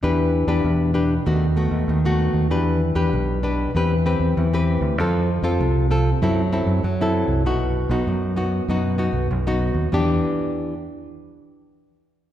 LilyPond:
<<
  \new Staff \with { instrumentName = "Nylon-string guitar" } { \time 4/4 \key e \minor \tempo 4 = 97 << { <d' g' b'>8. <d' g' b'>8. <d' g' b'>16 r16 <a b fis'>16 r16 <a b fis'>8. <a b fis'>8. | <d' g' b'>8 r16 <d' g' b'>8. <d' g' b'>8 <c' g' b'>16 r16 <c' g' b'>8. <c' g' b'>8. | <c' f' a'>8 r16 <c' f' a'>8. <c' f' a'>16 r16 <c' e' a'>16 r16 <c' e' a'>8 r16 <c' e' a'>8. | <b dis' fis'>8. <b dis' fis'>8. <b dis' fis'>8 <b dis' fis'>8 <b dis' fis'>8 r16 <b dis' fis'>8. |
<e b d' g'>8 r2. r8 | } \\ { e4 b,4 dis4 dis4 | e4 b,4 e4 e4 | f4 c4 fis4 fis4 | b,4 fis,4 b,4 fis,4 |
r1 | } >> }
  \new Staff \with { instrumentName = "Fingered electric bass" } { \clef bass \time 4/4 \key e \minor e,8. e,16 e,4 dis,8. dis,16 dis,8. dis,16 | e,8. e,16 b,,4 e,8. e,16 e,8. d,16 | f,8. f,16 c,4 fis,8. fis,16 fis,8. c,16 | b,,8. b,,16 fis,4 fis,8. b,,16 b,,8. dis,16 |
e,8 r2. r8 | }
>>